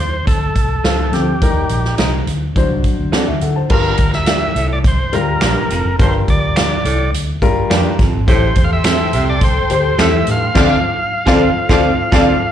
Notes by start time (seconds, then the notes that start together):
Already playing: D#2
0.00 C5
0.27 D2 A4, kick, closed hi-hat
0.55 C2, kick, closed hi-hat
0.84 C#2 F4 A4 C5 F5, snare, closed hi-hat
1.12 D2 F3 C4 G4 A4, snare, closed hi-hat
1.42 D#2 G3 D#4 A#4, kick, closed hi-hat
1.69 A#1, closed hi-hat
1.85 snare
1.98 C2 D#4 G4 A#4 D#5, snare, closed hi-hat
2.27 D2, closed hi-hat
2.56 D2 F#3 D4 C5, kick, closed hi-hat
2.70 C2
2.84 kick, closed hi-hat
2.99 D2
3.12 C4 F#4 A4 D5, muted fingered electric bass stroke, snare, closed hi-hat
3.28 D2 E5
3.41 D3 A4 F#5, closed hi-hat
3.56 C5 A5
3.70 G1 G2 G3 F4 A#4, kick, crash
3.98 D2, kick, closed hi-hat
4.13 E5, snare
4.26 A#3 F4 G4 D5, finger snap, snare, closed hi-hat
4.56 C2 A2, closed hi-hat
4.73 D5
4.84 C5, kick, closed hi-hat
5.13 D2 G3 F4 A#4, closed hi-hat
5.41 A#1 G2 A#3 F4 G4 D5, finger snap, snare, closed hi-hat
5.70 F1 F2, closed hi-hat
5.85 F#1
5.99 G1 G2 G3 F4 A#4 C5, kick, closed hi-hat
6.28 D2 D5, kick, closed hi-hat
6.56 A#3 F4 G4 D5, finger snap, snare, closed hi-hat
6.85 C2 A2, closed hi-hat
7.13 D2, closed hi-hat
7.42 G2 G3 F4 A#4, kick, closed hi-hat
7.70 F2 G2 A#3 F4 G4 D5, finger snap, snare, closed hi-hat
7.99 G1 F2, kick, snare, closed hi-hat
8.13 G#1
8.27 A1 A2 A3 G4 A4 C5 G5 C6, kick, closed hi-hat
8.55 E2, kick, closed hi-hat
8.64 F5
8.73 E5
8.84 C4 G4 A4 E5, finger snap, snare, closed hi-hat
9.13 C2 C3, closed hi-hat
9.30 D5
9.41 C5, kick, closed hi-hat
9.70 D2 A3 G4 C5, closed hi-hat
9.99 E2 A2 C4 G4 A4 E5, finger snap, snare, closed hi-hat
10.27 G2 A2, closed hi-hat
10.31 F5
10.54 D2 C4 F4 A4 C5 D5 F5 D6, kick, snare, crash
11.26 D2 F2 C4 F4 A4 C5 D5 F5 D6, kick, snare
11.69 D2 F2 C4 F4 A4 C5 D5 F5 D6, kick, snare
12.12 D2 F2 C4 F4 A4 C5 D5 F5 D6, kick, snare